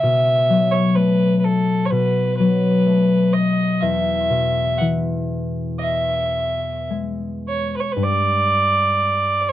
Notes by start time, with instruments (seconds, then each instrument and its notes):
Already playing: harp G#4
0.00 harp B2, fiddle E5
0.50 harp F#3
0.71 fiddle C#5
0.95 harp A3, fiddle B4
1.39 fiddle B4
1.44 fiddle A4
1.86 fiddle C#5
1.91 harp B2, fiddle B4
2.37 harp F#3, fiddle B4
2.86 harp A3
3.33 fiddle D#5
3.81 harp E2, fiddle E5
4.30 harp B2
4.77 harp E3, fiddle E5 F#5
5.79 fiddle D#5 E5
6.90 harp G#3
7.48 fiddle C#5
7.76 fiddle B4 C#5
7.92 fiddle B4
7.96 harp G2
8.03 fiddle D5
9.41 fiddle D5
9.49 fiddle C#5